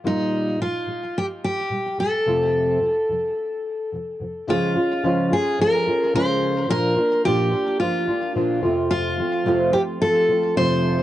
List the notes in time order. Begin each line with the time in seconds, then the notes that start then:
0.04 A#2 G3 A#3 D#4 F4
0.59 A#2 G3 F4
0.86 A#2 G3
1.18 G4
1.44 G4
1.70 A#2 G3
1.97 A#2 G3 A4
2.26 F2 C3 F3 A3 C4 F4
2.80 F2 C3 F3
3.09 F2 C3 F3
3.92 F2 C3 F3
4.20 F2 C3 F3
4.47 C#3 F3 G#3 C#4 F4
4.75 G#3 C#4 F4
5.04 C#3 F3 G#3 C#4 F4
5.31 G#3 C#4 F4 G#4
5.59 F3 G#3 C#4 F4 A#4
5.87 G#3 C#4 F4
6.14 C#3 F3 G#3 C#4 F4 C5
6.69 A#2 F3 A#3 D4 F4 A#4
6.97 A#3 D4 F4
7.25 A#2 F3 A#3 D4 F4 G4
7.51 A#3 D4 F4
7.80 F3 A#3 D4 F4
8.08 A#3 D4 F4
8.35 A#2 F3 A#3 D4 F4
8.63 F2 C3 F3 A3 C4 F4
8.91 F4
9.18 F3 A3 C4 F4
9.45 F2 C3 F3 A3 C4 F4
9.73 F3 A3 C4 F4 G4
10.01 F3 A3 C4 F4 A4
10.29 F3 A3 C4 F4
10.56 F2 C3 F3 A3 C4 F4 C5